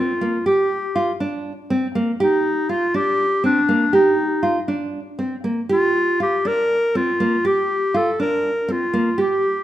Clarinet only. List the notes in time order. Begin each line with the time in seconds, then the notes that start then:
0.00 F4
0.47 G4
2.21 D#4
2.70 F4
2.96 G4
3.45 D4
3.95 D#4
5.71 F4
6.22 G4
6.47 A#4
6.96 F4
7.47 G4
7.96 A4
8.21 A#4
8.72 F4
9.21 G4